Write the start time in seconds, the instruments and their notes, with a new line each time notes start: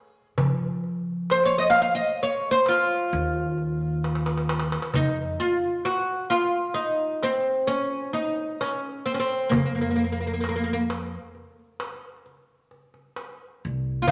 Already playing: oud G#4
0.38 upright bass F3, darbuka dum
0.84 darbuka ka
1.30 oud C5, darbuka tek
1.45 oud C#5
1.58 oud D#5
1.70 oud F5
1.76 darbuka tek
1.82 oud F5
1.95 oud D#5
2.20 oud C#5, darbuka ka
2.51 oud C5
2.66 oud F4, darbuka tek
3.12 upright bass D#2, darbuka ka
3.58 darbuka ka
3.81 darbuka ka
4.04 darbuka tek
4.15 darbuka ka
4.26 darbuka tek
4.38 darbuka ka
4.49 darbuka tek
4.60 darbuka ka
4.72 darbuka tek
4.82 darbuka ka
4.94 upright bass F2, oud D#4, darbuka dum
5.39 oud F4, darbuka ka
5.85 oud F#4, darbuka tek
6.30 oud F4, darbuka tek
6.74 oud D#4, darbuka ka
7.23 oud C4, darbuka tek
7.67 oud C#4, darbuka ka
8.13 oud D#4, darbuka ka
8.36 darbuka ka
8.61 oud C#4, darbuka tek
9.06 oud C4
9.14 oud C#4
9.20 oud C4
9.49 upright bass F2, oud A#3, darbuka dum
9.56 oud A#3
9.66 oud A#3
9.75 oud A#3
9.81 oud A#3
9.91 oud A#3
9.96 oud A#3, darbuka ka
10.04 oud A#3
10.12 oud A#3
10.21 oud A#3
10.27 oud A#3
10.34 oud A#3
10.41 oud A#3, darbuka tek
10.49 oud A#3
10.56 oud A#3
10.64 oud A#3
10.73 oud A#3
10.90 darbuka tek
11.35 darbuka ka
11.80 darbuka tek
12.26 darbuka ka
12.71 darbuka ka
12.94 darbuka ka
13.16 darbuka tek
13.65 upright bass C2
14.02 oud F4
14.07 oud D#4, darbuka dum